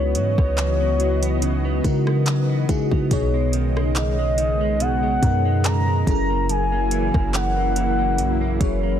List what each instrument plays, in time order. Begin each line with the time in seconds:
Already playing: 808-style bass C#2, fm electric piano C#3 G#3 D#4 E4 F#4 B4, clean electric guitar C#3 F#3 B3, analog synth pad E3 B3 F#4 D#5, soft synth lead C#5
0.15 808-style bass G#2, clean electric guitar F#3, soft synth lead C#5, closed hi-hat
0.38 808-style bass C#2, clean electric guitar B3, kick, cross-stick
0.58 clean electric guitar F#3, clap, closed hi-hat
0.80 clean electric guitar B3
1.00 clean electric guitar F#3, closed hi-hat
1.23 clean electric guitar B3, closed hi-hat
1.42 clean electric guitar C#3, closed hi-hat
1.65 clean electric guitar B3
1.84 fm electric piano C#3 G#3 D#4 E4 F#4 A#4, 808-style bass C#3, clean electric guitar F#3, kick, closed hi-hat
2.07 clean electric guitar B3, cross-stick
2.26 clean electric guitar F#3, clap, closed hi-hat
2.50 clean electric guitar B3
2.69 fm electric piano C#3 G#3 D#4 E4 F#4 G#4, 808-style bass C#3, clean electric guitar F#3, kick, closed hi-hat
2.91 808-style bass C#3, clean electric guitar B3, kick
3.11 808-style bass B1, fm electric piano B2 B3 D#4 G#4 C#5, clean electric guitar B2, analog synth pad C#3 G#3, kick, closed hi-hat
3.34 clean electric guitar G#3
3.53 clean electric guitar D#3, closed hi-hat
3.76 clean electric guitar G#3, cross-stick
3.96 clean electric guitar D#3, soft synth lead D#5, clap, closed hi-hat
4.19 clean electric guitar G#3
4.38 clean electric guitar D#3, closed hi-hat
4.61 clean electric guitar G#3
4.80 clean electric guitar B2, soft synth lead F#5, closed hi-hat
5.03 clean electric guitar G#3
5.22 808-style bass F#2, fm electric piano B2 B3 D#4 G#4 A#4, clean electric guitar D#3, kick, closed hi-hat
5.45 clean electric guitar G#3
5.64 clean electric guitar D#3, soft synth lead A#5, clap, closed hi-hat
5.88 clean electric guitar G#3
6.07 808-style bass F#1, clean electric guitar F#2, analog synth pad F#3 A#3 E4, fm electric piano F#3 C#4 E4 G#4 A4, soft synth lead A#5, kick, closed hi-hat
6.15 fm electric piano A#4
6.30 clean electric guitar A#3
6.49 clean electric guitar F#2, soft synth lead G#5, closed hi-hat
6.72 clean electric guitar A#3
6.91 clean electric guitar E3, closed hi-hat
7.14 808-style bass F#1, clean electric guitar A#3, kick, cross-stick
7.34 clean electric guitar E3, soft synth lead F#5, clap, closed hi-hat
7.57 clean electric guitar A#3
7.76 clean electric guitar E3, closed hi-hat
7.99 clean electric guitar A#3
8.18 808-style bass A#1, clean electric guitar F#2, closed hi-hat
8.41 clean electric guitar A#3
8.60 808-style bass F#1, clean electric guitar E3, fm electric piano F#3 C#4 E4 G#4 C#5, kick, closed hi-hat
8.83 clean electric guitar A#3